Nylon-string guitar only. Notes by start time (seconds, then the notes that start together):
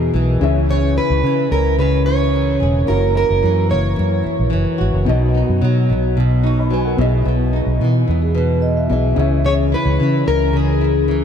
Already playing: B2 E3 B3 D#4
0.14 E3
0.41 C#3
0.69 C#3
0.97 E4
1.24 E3
1.51 C#4
1.79 C#3
2.07 E4
2.33 E3
2.60 G#4
2.87 F#2
3.15 E4
3.43 E3
3.70 A#3
3.96 F#2
4.24 E4
4.50 E3
4.78 F#4
5.06 B2
5.34 D#4
5.62 F#3
5.90 B3
6.17 B2
6.43 D#4
6.71 F#3
6.98 B2
7.25 B2
7.53 D#4
7.81 E3
8.08 B3
8.35 B2
8.90 E3
9.16 C#3
9.45 C#3
9.72 E4
10.00 E3
10.26 C#4
10.53 C#3
10.81 E4
11.08 E3